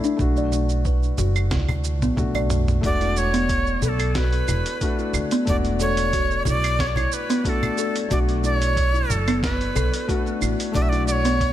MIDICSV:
0, 0, Header, 1, 7, 480
1, 0, Start_track
1, 0, Tempo, 659341
1, 144, Time_signature, 4, 2, 24, 8
1, 8393, End_track
2, 0, Start_track
2, 0, Title_t, "Native American-style wooden flute"
2, 0, Program_c, 0, 77
2, 2075, Note_on_c, 0, 74, 113
2, 2314, Note_on_c, 0, 73, 107
2, 2325, Note_off_c, 0, 74, 0
2, 2789, Note_off_c, 0, 73, 0
2, 2796, Note_on_c, 0, 71, 88
2, 2828, Note_on_c, 0, 69, 96
2, 2836, Note_off_c, 0, 71, 0
2, 3038, Note_on_c, 0, 71, 91
2, 3049, Note_off_c, 0, 69, 0
2, 3751, Note_off_c, 0, 71, 0
2, 3995, Note_on_c, 0, 74, 120
2, 4047, Note_off_c, 0, 74, 0
2, 4232, Note_on_c, 0, 73, 103
2, 4679, Note_off_c, 0, 73, 0
2, 4722, Note_on_c, 0, 74, 115
2, 4952, Note_on_c, 0, 73, 100
2, 4962, Note_off_c, 0, 74, 0
2, 5003, Note_on_c, 0, 74, 86
2, 5013, Note_off_c, 0, 73, 0
2, 5060, Note_on_c, 0, 73, 100
2, 5071, Note_off_c, 0, 74, 0
2, 5192, Note_on_c, 0, 71, 91
2, 5203, Note_off_c, 0, 73, 0
2, 5427, Note_off_c, 0, 71, 0
2, 5427, Note_on_c, 0, 71, 85
2, 5453, Note_on_c, 0, 69, 92
2, 5460, Note_off_c, 0, 71, 0
2, 5792, Note_off_c, 0, 69, 0
2, 5905, Note_on_c, 0, 74, 112
2, 5959, Note_off_c, 0, 74, 0
2, 6147, Note_on_c, 0, 73, 107
2, 6627, Note_on_c, 0, 69, 94
2, 6638, Note_off_c, 0, 73, 0
2, 6864, Note_off_c, 0, 69, 0
2, 6868, Note_on_c, 0, 71, 91
2, 7557, Note_off_c, 0, 71, 0
2, 7821, Note_on_c, 0, 74, 118
2, 7877, Note_on_c, 0, 76, 101
2, 7888, Note_off_c, 0, 74, 0
2, 7928, Note_on_c, 0, 74, 119
2, 7938, Note_off_c, 0, 76, 0
2, 8055, Note_off_c, 0, 74, 0
2, 8059, Note_on_c, 0, 74, 104
2, 8093, Note_on_c, 0, 73, 113
2, 8101, Note_off_c, 0, 74, 0
2, 8393, Note_off_c, 0, 73, 0
2, 8393, End_track
3, 0, Start_track
3, 0, Title_t, "Kalimba"
3, 0, Program_c, 1, 108
3, 28, Note_on_c, 1, 62, 99
3, 143, Note_off_c, 1, 62, 0
3, 273, Note_on_c, 1, 74, 78
3, 337, Note_off_c, 1, 74, 0
3, 624, Note_on_c, 1, 71, 78
3, 696, Note_off_c, 1, 71, 0
3, 865, Note_on_c, 1, 66, 76
3, 984, Note_off_c, 1, 66, 0
3, 1105, Note_on_c, 1, 64, 79
3, 1218, Note_off_c, 1, 64, 0
3, 1473, Note_on_c, 1, 59, 77
3, 1580, Note_off_c, 1, 59, 0
3, 1713, Note_on_c, 1, 74, 78
3, 1776, Note_off_c, 1, 74, 0
3, 2191, Note_on_c, 1, 64, 77
3, 2255, Note_off_c, 1, 64, 0
3, 2430, Note_on_c, 1, 59, 105
3, 2773, Note_off_c, 1, 59, 0
3, 2786, Note_on_c, 1, 69, 75
3, 2905, Note_off_c, 1, 69, 0
3, 3024, Note_on_c, 1, 66, 80
3, 3252, Note_off_c, 1, 66, 0
3, 3262, Note_on_c, 1, 64, 74
3, 3617, Note_off_c, 1, 64, 0
3, 3632, Note_on_c, 1, 64, 71
3, 3696, Note_off_c, 1, 64, 0
3, 3873, Note_on_c, 1, 59, 99
3, 4214, Note_off_c, 1, 59, 0
3, 4227, Note_on_c, 1, 69, 69
3, 4346, Note_off_c, 1, 69, 0
3, 4468, Note_on_c, 1, 66, 82
3, 4695, Note_off_c, 1, 66, 0
3, 4710, Note_on_c, 1, 64, 78
3, 5061, Note_off_c, 1, 64, 0
3, 5074, Note_on_c, 1, 64, 78
3, 5137, Note_off_c, 1, 64, 0
3, 5312, Note_on_c, 1, 59, 100
3, 5654, Note_off_c, 1, 59, 0
3, 5665, Note_on_c, 1, 69, 76
3, 5785, Note_off_c, 1, 69, 0
3, 5905, Note_on_c, 1, 66, 82
3, 6133, Note_off_c, 1, 66, 0
3, 6144, Note_on_c, 1, 64, 75
3, 6498, Note_off_c, 1, 64, 0
3, 6511, Note_on_c, 1, 64, 78
3, 6575, Note_off_c, 1, 64, 0
3, 6753, Note_on_c, 1, 59, 101
3, 7094, Note_off_c, 1, 59, 0
3, 7102, Note_on_c, 1, 69, 73
3, 7223, Note_off_c, 1, 69, 0
3, 7344, Note_on_c, 1, 66, 81
3, 7572, Note_off_c, 1, 66, 0
3, 7583, Note_on_c, 1, 64, 81
3, 7937, Note_off_c, 1, 64, 0
3, 7952, Note_on_c, 1, 64, 79
3, 8016, Note_off_c, 1, 64, 0
3, 8189, Note_on_c, 1, 59, 109
3, 8393, Note_off_c, 1, 59, 0
3, 8393, End_track
4, 0, Start_track
4, 0, Title_t, "Felt piano"
4, 0, Program_c, 2, 0
4, 0, Control_c, 2, 64, 127
4, 0, Note_on_c, 2, 57, 75
4, 0, Note_on_c, 2, 62, 68
4, 0, Note_on_c, 2, 64, 81
4, 110, Note_off_c, 2, 57, 0
4, 115, Note_off_c, 2, 62, 0
4, 119, Note_off_c, 2, 64, 0
4, 121, Note_on_c, 2, 57, 88
4, 138, Note_on_c, 2, 62, 77
4, 152, Note_on_c, 2, 66, 95
4, 153, Control_c, 2, 64, 0
4, 301, Control_c, 2, 64, 127
4, 1550, Note_off_c, 2, 57, 0
4, 1558, Note_off_c, 2, 62, 0
4, 1565, Note_off_c, 2, 66, 0
4, 1573, Note_on_c, 2, 57, 77
4, 1580, Note_on_c, 2, 62, 69
4, 1588, Note_on_c, 2, 66, 85
4, 2031, Note_off_c, 2, 57, 0
4, 2035, Note_off_c, 2, 62, 0
4, 2039, Note_off_c, 2, 66, 0
4, 2047, Note_on_c, 2, 57, 91
4, 2061, Note_on_c, 2, 62, 78
4, 2073, Control_c, 2, 64, 0
4, 2077, Note_on_c, 2, 66, 95
4, 2205, Control_c, 2, 64, 127
4, 3473, Note_off_c, 2, 57, 0
4, 3480, Note_off_c, 2, 62, 0
4, 3488, Note_off_c, 2, 66, 0
4, 3500, Note_on_c, 2, 57, 78
4, 3505, Note_on_c, 2, 62, 72
4, 3514, Note_on_c, 2, 66, 83
4, 3955, Note_off_c, 2, 57, 0
4, 3957, Note_off_c, 2, 62, 0
4, 3962, Note_off_c, 2, 66, 0
4, 3968, Note_on_c, 2, 57, 88
4, 3984, Note_on_c, 2, 62, 80
4, 3999, Note_on_c, 2, 66, 93
4, 5394, Note_off_c, 2, 57, 0
4, 5401, Note_off_c, 2, 62, 0
4, 5409, Note_off_c, 2, 66, 0
4, 5414, Note_on_c, 2, 57, 76
4, 5422, Note_on_c, 2, 62, 75
4, 5429, Note_on_c, 2, 66, 80
4, 5871, Note_off_c, 2, 57, 0
4, 5876, Note_off_c, 2, 62, 0
4, 5879, Note_off_c, 2, 66, 0
4, 5886, Note_on_c, 2, 57, 90
4, 5901, Note_on_c, 2, 62, 82
4, 5915, Control_c, 2, 64, 0
4, 5916, Note_on_c, 2, 66, 90
4, 6046, Control_c, 2, 64, 127
4, 7312, Note_off_c, 2, 57, 0
4, 7320, Note_off_c, 2, 62, 0
4, 7327, Note_off_c, 2, 66, 0
4, 7335, Note_on_c, 2, 57, 79
4, 7341, Note_on_c, 2, 62, 68
4, 7349, Note_on_c, 2, 66, 83
4, 7792, Note_off_c, 2, 57, 0
4, 7795, Note_off_c, 2, 62, 0
4, 7799, Note_off_c, 2, 66, 0
4, 7803, Note_on_c, 2, 57, 87
4, 7818, Note_on_c, 2, 62, 82
4, 7831, Note_on_c, 2, 66, 94
4, 8393, Note_off_c, 2, 57, 0
4, 8393, Note_off_c, 2, 62, 0
4, 8393, Note_off_c, 2, 66, 0
4, 8393, End_track
5, 0, Start_track
5, 0, Title_t, "Upright bass"
5, 0, Program_c, 3, 32
5, 140, Note_on_c, 3, 35, 94
5, 806, Note_off_c, 3, 35, 0
5, 859, Note_on_c, 3, 30, 96
5, 1102, Note_on_c, 3, 38, 97
5, 1113, Note_off_c, 3, 30, 0
5, 1463, Note_off_c, 3, 38, 0
5, 1463, Note_on_c, 3, 35, 75
5, 1545, Note_off_c, 3, 35, 0
5, 1580, Note_on_c, 3, 35, 87
5, 2006, Note_off_c, 3, 35, 0
5, 2061, Note_on_c, 3, 28, 97
5, 2726, Note_off_c, 3, 28, 0
5, 2780, Note_on_c, 3, 35, 94
5, 3206, Note_off_c, 3, 35, 0
5, 3263, Note_on_c, 3, 28, 92
5, 3351, Note_off_c, 3, 28, 0
5, 3738, Note_on_c, 3, 38, 98
5, 3828, Note_off_c, 3, 38, 0
5, 3986, Note_on_c, 3, 28, 95
5, 4649, Note_off_c, 3, 28, 0
5, 4704, Note_on_c, 3, 35, 95
5, 5128, Note_off_c, 3, 35, 0
5, 5903, Note_on_c, 3, 35, 97
5, 6567, Note_off_c, 3, 35, 0
5, 6622, Note_on_c, 3, 30, 90
5, 7047, Note_off_c, 3, 30, 0
5, 7103, Note_on_c, 3, 35, 98
5, 7191, Note_off_c, 3, 35, 0
5, 7581, Note_on_c, 3, 33, 92
5, 7670, Note_off_c, 3, 33, 0
5, 7823, Note_on_c, 3, 35, 100
5, 8393, Note_off_c, 3, 35, 0
5, 8393, End_track
6, 0, Start_track
6, 0, Title_t, "Cajon"
6, 380, Note_on_c, 9, 38, 61
6, 452, Note_off_c, 9, 38, 0
6, 859, Note_on_c, 9, 36, 90
6, 932, Note_off_c, 9, 36, 0
6, 991, Note_on_c, 9, 38, 57
6, 1064, Note_off_c, 9, 38, 0
6, 1231, Note_on_c, 9, 36, 85
6, 1303, Note_off_c, 9, 36, 0
6, 1709, Note_on_c, 9, 36, 88
6, 1781, Note_off_c, 9, 36, 0
6, 2306, Note_on_c, 9, 38, 55
6, 2379, Note_off_c, 9, 38, 0
6, 2782, Note_on_c, 9, 36, 96
6, 2854, Note_off_c, 9, 36, 0
6, 2904, Note_on_c, 9, 38, 55
6, 2977, Note_off_c, 9, 38, 0
6, 3265, Note_on_c, 9, 36, 83
6, 3338, Note_off_c, 9, 36, 0
6, 3630, Note_on_c, 9, 38, 39
6, 3703, Note_off_c, 9, 38, 0
6, 3741, Note_on_c, 9, 38, 35
6, 3814, Note_off_c, 9, 38, 0
6, 4218, Note_on_c, 9, 38, 64
6, 4291, Note_off_c, 9, 38, 0
6, 4698, Note_on_c, 9, 36, 93
6, 4770, Note_off_c, 9, 36, 0
6, 5066, Note_on_c, 9, 36, 77
6, 5139, Note_off_c, 9, 36, 0
6, 5185, Note_on_c, 9, 38, 36
6, 5258, Note_off_c, 9, 38, 0
6, 5554, Note_on_c, 9, 36, 96
6, 5627, Note_off_c, 9, 36, 0
6, 6143, Note_on_c, 9, 38, 64
6, 6216, Note_off_c, 9, 38, 0
6, 6627, Note_on_c, 9, 36, 95
6, 6699, Note_off_c, 9, 36, 0
6, 6756, Note_on_c, 9, 38, 56
6, 6829, Note_off_c, 9, 38, 0
6, 7105, Note_on_c, 9, 36, 92
6, 7178, Note_off_c, 9, 36, 0
6, 7471, Note_on_c, 9, 38, 36
6, 7544, Note_off_c, 9, 38, 0
6, 7576, Note_on_c, 9, 38, 36
6, 7648, Note_off_c, 9, 38, 0
6, 8060, Note_on_c, 9, 38, 59
6, 8133, Note_off_c, 9, 38, 0
6, 8393, End_track
7, 0, Start_track
7, 0, Title_t, "Drums"
7, 30, Note_on_c, 9, 69, 32
7, 102, Note_off_c, 9, 69, 0
7, 140, Note_on_c, 9, 36, 103
7, 142, Note_on_c, 9, 69, 41
7, 213, Note_off_c, 9, 36, 0
7, 215, Note_off_c, 9, 69, 0
7, 265, Note_on_c, 9, 69, 21
7, 338, Note_off_c, 9, 69, 0
7, 382, Note_on_c, 9, 69, 75
7, 455, Note_off_c, 9, 69, 0
7, 504, Note_on_c, 9, 69, 32
7, 577, Note_off_c, 9, 69, 0
7, 620, Note_on_c, 9, 69, 45
7, 621, Note_on_c, 9, 36, 98
7, 693, Note_off_c, 9, 36, 0
7, 693, Note_off_c, 9, 69, 0
7, 749, Note_on_c, 9, 69, 23
7, 822, Note_off_c, 9, 69, 0
7, 860, Note_on_c, 9, 69, 70
7, 932, Note_off_c, 9, 69, 0
7, 989, Note_on_c, 9, 69, 29
7, 989, Note_on_c, 9, 75, 74
7, 1062, Note_off_c, 9, 69, 0
7, 1062, Note_off_c, 9, 75, 0
7, 1101, Note_on_c, 9, 38, 76
7, 1101, Note_on_c, 9, 48, 59
7, 1101, Note_on_c, 9, 69, 41
7, 1102, Note_on_c, 9, 36, 100
7, 1174, Note_off_c, 9, 36, 0
7, 1174, Note_off_c, 9, 38, 0
7, 1174, Note_off_c, 9, 48, 0
7, 1174, Note_off_c, 9, 69, 0
7, 1227, Note_on_c, 9, 48, 59
7, 1227, Note_on_c, 9, 69, 20
7, 1227, Note_on_c, 9, 75, 62
7, 1300, Note_off_c, 9, 48, 0
7, 1300, Note_off_c, 9, 69, 0
7, 1300, Note_off_c, 9, 75, 0
7, 1342, Note_on_c, 9, 69, 76
7, 1415, Note_off_c, 9, 69, 0
7, 1473, Note_on_c, 9, 47, 68
7, 1473, Note_on_c, 9, 69, 34
7, 1545, Note_off_c, 9, 47, 0
7, 1546, Note_off_c, 9, 69, 0
7, 1582, Note_on_c, 9, 36, 97
7, 1586, Note_on_c, 9, 47, 83
7, 1586, Note_on_c, 9, 69, 42
7, 1655, Note_off_c, 9, 36, 0
7, 1659, Note_off_c, 9, 47, 0
7, 1659, Note_off_c, 9, 69, 0
7, 1711, Note_on_c, 9, 75, 81
7, 1712, Note_on_c, 9, 69, 20
7, 1784, Note_off_c, 9, 69, 0
7, 1784, Note_off_c, 9, 75, 0
7, 1822, Note_on_c, 9, 45, 96
7, 1822, Note_on_c, 9, 69, 70
7, 1895, Note_off_c, 9, 45, 0
7, 1895, Note_off_c, 9, 69, 0
7, 1953, Note_on_c, 9, 45, 87
7, 1954, Note_on_c, 9, 69, 34
7, 2026, Note_off_c, 9, 45, 0
7, 2026, Note_off_c, 9, 69, 0
7, 2062, Note_on_c, 9, 36, 110
7, 2067, Note_on_c, 9, 42, 56
7, 2067, Note_on_c, 9, 69, 43
7, 2135, Note_off_c, 9, 36, 0
7, 2139, Note_off_c, 9, 42, 0
7, 2140, Note_off_c, 9, 69, 0
7, 2192, Note_on_c, 9, 42, 31
7, 2192, Note_on_c, 9, 69, 23
7, 2265, Note_off_c, 9, 42, 0
7, 2265, Note_off_c, 9, 69, 0
7, 2306, Note_on_c, 9, 69, 80
7, 2379, Note_off_c, 9, 69, 0
7, 2431, Note_on_c, 9, 42, 47
7, 2431, Note_on_c, 9, 69, 34
7, 2504, Note_off_c, 9, 42, 0
7, 2504, Note_off_c, 9, 69, 0
7, 2542, Note_on_c, 9, 36, 98
7, 2544, Note_on_c, 9, 42, 63
7, 2544, Note_on_c, 9, 69, 48
7, 2615, Note_off_c, 9, 36, 0
7, 2617, Note_off_c, 9, 42, 0
7, 2617, Note_off_c, 9, 69, 0
7, 2668, Note_on_c, 9, 69, 22
7, 2741, Note_off_c, 9, 69, 0
7, 2784, Note_on_c, 9, 69, 71
7, 2856, Note_off_c, 9, 69, 0
7, 2909, Note_on_c, 9, 42, 44
7, 2909, Note_on_c, 9, 69, 30
7, 2909, Note_on_c, 9, 75, 74
7, 2982, Note_off_c, 9, 42, 0
7, 2982, Note_off_c, 9, 69, 0
7, 2982, Note_off_c, 9, 75, 0
7, 3022, Note_on_c, 9, 38, 83
7, 3022, Note_on_c, 9, 42, 56
7, 3022, Note_on_c, 9, 69, 43
7, 3024, Note_on_c, 9, 36, 102
7, 3095, Note_off_c, 9, 38, 0
7, 3095, Note_off_c, 9, 42, 0
7, 3095, Note_off_c, 9, 69, 0
7, 3096, Note_off_c, 9, 36, 0
7, 3149, Note_on_c, 9, 42, 31
7, 3149, Note_on_c, 9, 69, 22
7, 3221, Note_off_c, 9, 42, 0
7, 3222, Note_off_c, 9, 69, 0
7, 3262, Note_on_c, 9, 69, 78
7, 3262, Note_on_c, 9, 75, 59
7, 3335, Note_off_c, 9, 69, 0
7, 3335, Note_off_c, 9, 75, 0
7, 3391, Note_on_c, 9, 42, 47
7, 3392, Note_on_c, 9, 69, 35
7, 3464, Note_off_c, 9, 42, 0
7, 3464, Note_off_c, 9, 69, 0
7, 3503, Note_on_c, 9, 36, 100
7, 3504, Note_on_c, 9, 42, 57
7, 3505, Note_on_c, 9, 69, 47
7, 3576, Note_off_c, 9, 36, 0
7, 3577, Note_off_c, 9, 42, 0
7, 3577, Note_off_c, 9, 69, 0
7, 3631, Note_on_c, 9, 69, 21
7, 3704, Note_off_c, 9, 69, 0
7, 3743, Note_on_c, 9, 69, 81
7, 3743, Note_on_c, 9, 75, 79
7, 3815, Note_off_c, 9, 75, 0
7, 3816, Note_off_c, 9, 69, 0
7, 3868, Note_on_c, 9, 42, 49
7, 3868, Note_on_c, 9, 69, 35
7, 3941, Note_off_c, 9, 42, 0
7, 3941, Note_off_c, 9, 69, 0
7, 3984, Note_on_c, 9, 36, 107
7, 3984, Note_on_c, 9, 42, 57
7, 3984, Note_on_c, 9, 69, 47
7, 4057, Note_off_c, 9, 36, 0
7, 4057, Note_off_c, 9, 42, 0
7, 4057, Note_off_c, 9, 69, 0
7, 4111, Note_on_c, 9, 42, 30
7, 4111, Note_on_c, 9, 69, 21
7, 4183, Note_off_c, 9, 42, 0
7, 4184, Note_off_c, 9, 69, 0
7, 4222, Note_on_c, 9, 69, 78
7, 4295, Note_off_c, 9, 69, 0
7, 4348, Note_on_c, 9, 42, 48
7, 4348, Note_on_c, 9, 69, 35
7, 4421, Note_off_c, 9, 42, 0
7, 4421, Note_off_c, 9, 69, 0
7, 4464, Note_on_c, 9, 36, 112
7, 4465, Note_on_c, 9, 42, 65
7, 4465, Note_on_c, 9, 69, 50
7, 4536, Note_off_c, 9, 36, 0
7, 4537, Note_off_c, 9, 42, 0
7, 4538, Note_off_c, 9, 69, 0
7, 4592, Note_on_c, 9, 69, 23
7, 4665, Note_off_c, 9, 69, 0
7, 4704, Note_on_c, 9, 69, 80
7, 4777, Note_off_c, 9, 69, 0
7, 4834, Note_on_c, 9, 42, 43
7, 4834, Note_on_c, 9, 75, 71
7, 4835, Note_on_c, 9, 69, 34
7, 4907, Note_off_c, 9, 42, 0
7, 4907, Note_off_c, 9, 75, 0
7, 4908, Note_off_c, 9, 69, 0
7, 4943, Note_on_c, 9, 36, 109
7, 4950, Note_on_c, 9, 38, 77
7, 4950, Note_on_c, 9, 42, 57
7, 4950, Note_on_c, 9, 69, 49
7, 5016, Note_off_c, 9, 36, 0
7, 5023, Note_off_c, 9, 38, 0
7, 5023, Note_off_c, 9, 42, 0
7, 5023, Note_off_c, 9, 69, 0
7, 5075, Note_on_c, 9, 42, 29
7, 5075, Note_on_c, 9, 69, 23
7, 5075, Note_on_c, 9, 75, 56
7, 5147, Note_off_c, 9, 42, 0
7, 5147, Note_off_c, 9, 75, 0
7, 5148, Note_off_c, 9, 69, 0
7, 5185, Note_on_c, 9, 69, 80
7, 5258, Note_off_c, 9, 69, 0
7, 5316, Note_on_c, 9, 42, 45
7, 5317, Note_on_c, 9, 69, 38
7, 5389, Note_off_c, 9, 42, 0
7, 5389, Note_off_c, 9, 69, 0
7, 5423, Note_on_c, 9, 36, 101
7, 5427, Note_on_c, 9, 42, 57
7, 5427, Note_on_c, 9, 69, 46
7, 5496, Note_off_c, 9, 36, 0
7, 5500, Note_off_c, 9, 42, 0
7, 5500, Note_off_c, 9, 69, 0
7, 5554, Note_on_c, 9, 69, 21
7, 5554, Note_on_c, 9, 75, 73
7, 5627, Note_off_c, 9, 69, 0
7, 5627, Note_off_c, 9, 75, 0
7, 5663, Note_on_c, 9, 69, 83
7, 5736, Note_off_c, 9, 69, 0
7, 5792, Note_on_c, 9, 42, 46
7, 5792, Note_on_c, 9, 69, 37
7, 5865, Note_off_c, 9, 42, 0
7, 5865, Note_off_c, 9, 69, 0
7, 5903, Note_on_c, 9, 36, 111
7, 5904, Note_on_c, 9, 42, 55
7, 5904, Note_on_c, 9, 69, 47
7, 5976, Note_off_c, 9, 36, 0
7, 5976, Note_off_c, 9, 42, 0
7, 5977, Note_off_c, 9, 69, 0
7, 6033, Note_on_c, 9, 42, 29
7, 6033, Note_on_c, 9, 69, 21
7, 6105, Note_off_c, 9, 42, 0
7, 6106, Note_off_c, 9, 69, 0
7, 6145, Note_on_c, 9, 69, 79
7, 6217, Note_off_c, 9, 69, 0
7, 6273, Note_on_c, 9, 42, 44
7, 6273, Note_on_c, 9, 69, 37
7, 6346, Note_off_c, 9, 42, 0
7, 6346, Note_off_c, 9, 69, 0
7, 6383, Note_on_c, 9, 36, 109
7, 6387, Note_on_c, 9, 42, 60
7, 6387, Note_on_c, 9, 69, 50
7, 6456, Note_off_c, 9, 36, 0
7, 6459, Note_off_c, 9, 42, 0
7, 6460, Note_off_c, 9, 69, 0
7, 6514, Note_on_c, 9, 69, 23
7, 6586, Note_off_c, 9, 69, 0
7, 6627, Note_on_c, 9, 69, 77
7, 6700, Note_off_c, 9, 69, 0
7, 6754, Note_on_c, 9, 42, 41
7, 6754, Note_on_c, 9, 69, 33
7, 6754, Note_on_c, 9, 75, 68
7, 6827, Note_off_c, 9, 42, 0
7, 6827, Note_off_c, 9, 69, 0
7, 6827, Note_off_c, 9, 75, 0
7, 6864, Note_on_c, 9, 36, 112
7, 6870, Note_on_c, 9, 38, 80
7, 6870, Note_on_c, 9, 42, 57
7, 6870, Note_on_c, 9, 69, 45
7, 6937, Note_off_c, 9, 36, 0
7, 6942, Note_off_c, 9, 38, 0
7, 6942, Note_off_c, 9, 42, 0
7, 6943, Note_off_c, 9, 69, 0
7, 6996, Note_on_c, 9, 42, 32
7, 6996, Note_on_c, 9, 69, 22
7, 7069, Note_off_c, 9, 42, 0
7, 7069, Note_off_c, 9, 69, 0
7, 7107, Note_on_c, 9, 69, 82
7, 7107, Note_on_c, 9, 75, 57
7, 7179, Note_off_c, 9, 75, 0
7, 7180, Note_off_c, 9, 69, 0
7, 7233, Note_on_c, 9, 42, 46
7, 7234, Note_on_c, 9, 69, 36
7, 7306, Note_off_c, 9, 42, 0
7, 7306, Note_off_c, 9, 69, 0
7, 7344, Note_on_c, 9, 36, 107
7, 7348, Note_on_c, 9, 42, 53
7, 7349, Note_on_c, 9, 69, 48
7, 7416, Note_off_c, 9, 36, 0
7, 7421, Note_off_c, 9, 42, 0
7, 7421, Note_off_c, 9, 69, 0
7, 7474, Note_on_c, 9, 69, 21
7, 7547, Note_off_c, 9, 69, 0
7, 7586, Note_on_c, 9, 69, 81
7, 7586, Note_on_c, 9, 75, 76
7, 7658, Note_off_c, 9, 75, 0
7, 7659, Note_off_c, 9, 69, 0
7, 7716, Note_on_c, 9, 42, 47
7, 7717, Note_on_c, 9, 69, 36
7, 7789, Note_off_c, 9, 42, 0
7, 7789, Note_off_c, 9, 69, 0
7, 7823, Note_on_c, 9, 36, 105
7, 7829, Note_on_c, 9, 42, 52
7, 7829, Note_on_c, 9, 69, 45
7, 7896, Note_off_c, 9, 36, 0
7, 7902, Note_off_c, 9, 42, 0
7, 7902, Note_off_c, 9, 69, 0
7, 7954, Note_on_c, 9, 42, 29
7, 7955, Note_on_c, 9, 69, 22
7, 8027, Note_off_c, 9, 42, 0
7, 8027, Note_off_c, 9, 69, 0
7, 8067, Note_on_c, 9, 69, 84
7, 8139, Note_off_c, 9, 69, 0
7, 8192, Note_on_c, 9, 42, 44
7, 8192, Note_on_c, 9, 69, 37
7, 8265, Note_off_c, 9, 42, 0
7, 8265, Note_off_c, 9, 69, 0
7, 8303, Note_on_c, 9, 36, 108
7, 8307, Note_on_c, 9, 42, 59
7, 8307, Note_on_c, 9, 69, 53
7, 8376, Note_off_c, 9, 36, 0
7, 8380, Note_off_c, 9, 42, 0
7, 8380, Note_off_c, 9, 69, 0
7, 8393, End_track
0, 0, End_of_file